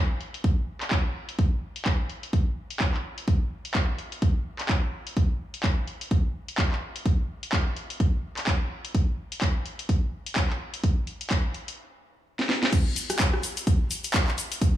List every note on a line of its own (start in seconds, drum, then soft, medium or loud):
0.21 closed hi-hat soft
0.34 closed hi-hat soft
0.44 kick loud
0.44 closed hi-hat medium
0.81 clap soft
0.81 closed hi-hat soft
0.91 kick loud
0.91 clap loud
0.91 closed hi-hat medium
1.29 closed hi-hat soft
1.39 kick loud
1.39 closed hi-hat medium
1.76 closed hi-hat soft
1.85 kick loud
1.85 clap loud
1.85 closed hi-hat medium
2.10 closed hi-hat soft
2.23 closed hi-hat soft
2.33 kick loud
2.33 closed hi-hat medium
2.70 closed hi-hat soft
2.80 kick loud
2.80 clap loud
2.80 closed hi-hat medium
2.94 clap soft
3.18 closed hi-hat soft
3.28 kick loud
3.28 closed hi-hat medium
3.65 closed hi-hat soft
3.75 kick loud
3.75 clap loud
3.75 closed hi-hat medium
3.98 closed hi-hat soft
4.12 closed hi-hat soft
4.22 kick loud
4.22 closed hi-hat medium
4.59 clap soft
4.59 closed hi-hat soft
4.69 kick loud
4.69 clap loud
4.69 closed hi-hat medium
5.07 closed hi-hat soft
5.17 kick loud
5.17 closed hi-hat medium
5.54 closed hi-hat soft
5.64 kick loud
5.64 clap loud
5.64 closed hi-hat medium
5.88 closed hi-hat soft
6.01 closed hi-hat soft
6.11 kick loud
6.11 closed hi-hat medium
6.48 closed hi-hat soft
6.58 kick loud
6.58 clap loud
6.58 closed hi-hat medium
6.72 clap soft
6.96 closed hi-hat soft
7.06 kick loud
7.06 closed hi-hat medium
7.43 closed hi-hat soft
7.53 kick loud
7.53 clap loud
7.53 closed hi-hat medium
7.77 closed hi-hat soft
7.90 closed hi-hat soft
8.00 kick loud
8.00 closed hi-hat medium
8.37 clap soft
8.37 closed hi-hat soft
8.47 kick loud
8.47 clap loud
8.47 closed hi-hat medium
8.85 closed hi-hat soft
8.95 kick loud
8.95 closed hi-hat medium
9.32 closed hi-hat soft
9.41 kick loud
9.41 clap loud
9.41 closed hi-hat medium
9.66 closed hi-hat soft
9.79 closed hi-hat medium
9.89 kick loud
9.89 closed hi-hat medium
10.26 closed hi-hat soft
10.36 kick loud
10.36 clap loud
10.36 closed hi-hat medium
10.50 clap soft
10.74 closed hi-hat soft
10.84 kick loud
10.84 closed hi-hat medium
11.07 closed hi-hat soft
11.21 closed hi-hat medium
11.30 kick loud
11.30 clap loud
11.30 closed hi-hat medium
11.54 closed hi-hat soft
11.68 closed hi-hat medium
12.39 snare soft
12.49 snare medium
12.63 snare medium
12.73 kick loud
12.73 closed hi-hat medium
12.73 crash loud
12.73 shaker soft
12.96 open hi-hat loud
12.96 shaker medium
13.10 cross-stick medium
13.10 closed hi-hat medium
13.10 shaker soft
13.19 kick loud
13.19 clap loud
13.19 closed hi-hat medium
13.19 shaker soft
13.34 cross-stick medium
13.43 open hi-hat medium
13.43 shaker medium
13.57 closed hi-hat medium
13.57 shaker medium
13.67 kick loud
13.67 closed hi-hat medium
13.67 shaker soft
13.91 open hi-hat loud
13.91 shaker medium
14.04 closed hi-hat medium
14.04 shaker medium
14.14 kick loud
14.14 clap loud
14.14 closed hi-hat medium
14.14 shaker soft
14.28 clap soft
14.38 open hi-hat medium
14.38 shaker medium
14.52 closed hi-hat medium
14.52 shaker medium
14.62 kick loud
14.62 closed hi-hat medium
14.62 shaker soft